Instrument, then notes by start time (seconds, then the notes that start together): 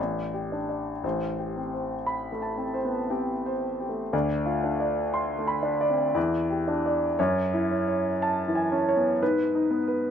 grand piano
0.00 A1 D5
0.33 G4
0.52 D4
0.69 D5
1.04 A1 C5
1.39 G4
1.56 C4
1.74 C5
2.06 B5
2.32 A3
2.42 A5
2.57 C4
2.74 C5
2.85 B3
3.10 C4 G4
3.46 C5
3.80 G4
3.89 A3
4.13 D2 D5
4.46 F4
4.64 D4
4.80 D5
5.14 C6
5.39 A3
5.47 B5
5.63 D4
5.81 D5
5.90 C4
6.15 E2 D5
6.50 G4
6.68 D4
6.86 D5
7.19 F#2 C#5
7.53 E4
7.71 C#4
7.88 C#5
8.22 A5
8.48 E3
8.55 G#5
8.72 C#4
8.89 C#5
8.97 B3
9.22 G#2 B4
9.55 D#4
9.70 B3
9.88 B4